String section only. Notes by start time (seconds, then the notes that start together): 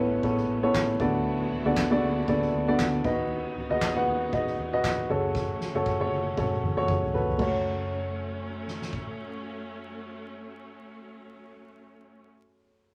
Already playing: A3 B3 C#4
1.00 D3 E4 F#4
3.05 F#3 D#4
5.10 A3 C#4
7.39 F#3 A3 C#4